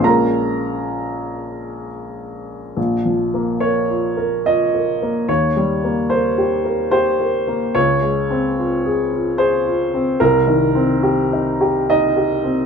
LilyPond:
\new Staff \with { instrumentName = "Upright piano" } { \time 3/4 \key bes \dorian \tempo 4 = 72 << { <bes' bes''>2 r4 | r4 des''4 ees''4 | des''4 c''4 c''4 | des''2 c''4 |
bes'2 ees''4 | } \\ { <bes,, aes des'>2. | \tuplet 3/2 { bes,,8 f8 bes8 bes'8 f'8 bes'8 f'8 bes'8 bes8 } | \tuplet 3/2 { ees,8 g8 bes8 bes'8 g'8 bes'8 g'8 bes'8 bes8 } | \tuplet 3/2 { des,8 aes8 c'8 f'8 aes'8 f'8 aes'8 f'8 c'8 } |
\tuplet 3/2 { c,8 ees8 c'8 g'8 ees'8 g'8 ees'8 g'8 c'8 } | } >> }